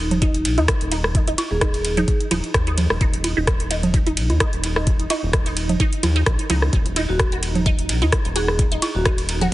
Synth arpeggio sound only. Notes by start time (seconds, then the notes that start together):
0.22 D#4
0.58 D#4
0.91 D#4
1.27 D#4
1.61 D#4
1.97 D#4
2.31 D#4
2.67 D#4
3.01 D#4
3.37 D#4
3.71 D#4
4.06 D#4
4.40 D#4
4.76 D#4
5.10 D#4
5.46 D#4
5.80 D#4
6.16 D#4
6.50 D#4
6.96 D#4
7.32 F#4
7.66 D#4
8.02 D#4
8.36 F#4
8.72 D#4
9.05 D#4
9.41 F#4